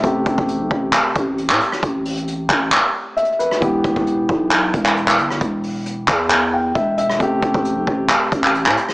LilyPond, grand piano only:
<<
  \new Staff \with { instrumentName = "Grand piano" } { \time 4/4 \key a \dorian \tempo 4 = 134 r1 | r2. e''8 b'8 | r1 | r2 r8 g''8 e''8 e''8 |
r1 | }
  \new Staff \with { instrumentName = "Grand piano" } { \time 4/4 \key a \dorian <c a g'>1~ | <c a g'>1 | <e b g'>1~ | <e b g'>1 |
<c a g'>1 | }
>>